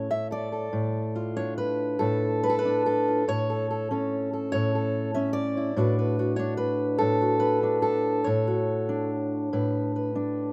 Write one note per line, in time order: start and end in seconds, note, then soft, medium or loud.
0.00 0.71 A2 medium
0.00 0.74 C#5 medium
0.11 0.30 E5 medium
0.31 0.51 A4 soft
0.31 2.01 D5 medium
0.52 1.98 A4 soft
0.73 2.00 A2 medium
1.16 3.07 F4 soft
1.37 2.64 D4 soft
1.37 1.57 C#5 medium
1.58 2.42 B4 medium
1.99 3.27 A2 medium
1.99 2.48 A4 medium
2.43 2.57 B4 medium
2.50 2.85 A4 medium
2.59 3.28 B4 medium
2.65 3.23 D4 medium
2.86 3.28 A4 medium
3.08 3.23 F4 soft
3.28 4.53 A2 medium
3.28 4.51 C#5 loud
3.50 3.70 A4 soft
3.71 3.91 A4 soft
3.91 5.14 C#4 medium
3.91 4.33 A4 soft
4.33 4.75 A4 soft
4.52 5.76 A2 medium
4.52 5.56 C#5 medium
4.75 5.14 A4 soft
5.14 5.72 C#4 medium
5.14 5.33 E5 medium
5.33 6.98 D5 medium
5.57 5.77 E4 soft
5.76 7.01 A2 medium
5.76 6.39 D4 medium
5.76 6.19 F#4 soft
5.76 5.98 B4 soft
5.99 6.36 B4 soft
6.19 7.20 F#4 soft
6.36 7.63 D4 medium
6.36 6.57 C#5 medium
6.57 7.38 B4 medium
6.98 8.26 A2 medium
6.98 7.81 A4 medium
7.22 8.21 F#4 soft
7.40 8.24 B4 medium
7.63 8.27 D4 medium
7.82 9.10 A4 medium
8.24 9.52 A2 medium
8.24 9.52 C#5 medium
8.48 10.53 F#4 soft
8.89 10.14 D4 medium
9.53 10.53 A2 medium
9.53 9.95 B4 soft
9.96 10.53 B4 soft
10.15 10.53 D4 medium